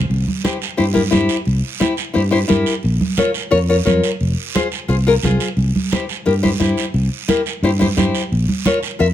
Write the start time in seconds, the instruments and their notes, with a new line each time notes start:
0.10 fingered electric bass C2, high conga, long guiro
0.28 high conga
0.44 nylon-string guitar E4 G4 C5, high conga, short guiro
0.62 short guiro
0.77 fingered electric bass G2, nylon-string guitar E4 G4 C5, high conga, long guiro
0.94 nylon-string guitar E4 G4 A#4, high conga
1.11 fingered electric bass G2, nylon-string guitar E4 G4 C5, high conga, short guiro
1.29 short guiro
1.45 fingered electric bass C2, high conga, long guiro
1.80 nylon-string guitar E4 G4 C5, high conga, short guiro
1.97 short guiro
2.14 fingered electric bass G2, nylon-string guitar E4 G4 C5, high conga, long guiro
2.31 nylon-string guitar E4 G4 C5
2.48 fingered electric bass G2, nylon-string guitar E4 G4 A#4, high conga, short guiro
2.66 short guiro
2.83 fingered electric bass A#1, high conga, long guiro
3.01 high conga
3.17 nylon-string guitar F4 A#4 C#5, high conga, short guiro
3.34 short guiro
3.51 fingered electric bass F2, nylon-string guitar F4 A#4 C#5, high conga, long guiro
3.69 nylon-string guitar F4 A#4 C#5
3.85 fingered electric bass F2, nylon-string guitar F4 A#4 C#5, high conga, short guiro
4.04 short guiro
4.21 fingered electric bass F1, high conga, long guiro
4.55 nylon-string guitar F4 G#4 C5, high conga, short guiro
4.72 short guiro
4.88 fingered electric bass C2, nylon-string guitar F4 G#4 C5, high conga, long guiro
5.07 nylon-string guitar F4 G#4 A#4
5.23 fingered electric bass C2, nylon-string guitar F4 G#4 C5, high conga, short guiro
5.40 short guiro
5.57 fingered electric bass C2, high conga, long guiro
5.76 high conga
5.91 nylon-string guitar E4 G4 C5, high conga, short guiro
6.09 short guiro
6.26 fingered electric bass G2, nylon-string guitar E4 G4 A#4, high conga, long guiro
6.43 nylon-string guitar E4 G4 C5, high conga
6.60 fingered electric bass G2, nylon-string guitar E4 G4 C5, high conga, short guiro
6.77 short guiro
6.94 fingered electric bass C2, high conga, long guiro
7.28 nylon-string guitar E4 G4 A#4, high conga, short guiro
7.46 short guiro
7.63 fingered electric bass G2, nylon-string guitar E4 G4 C5, high conga, long guiro
7.79 nylon-string guitar E4 G4 C5, high conga
7.97 fingered electric bass G2, nylon-string guitar E4 G4 C5, high conga, short guiro
8.15 short guiro
8.32 fingered electric bass A#1, high conga, long guiro
8.49 high conga
8.66 nylon-string guitar F4 A#4 C#5, high conga, short guiro
8.83 short guiro
8.99 fingered electric bass F2, nylon-string guitar F4 A#4 E5, high conga, long guiro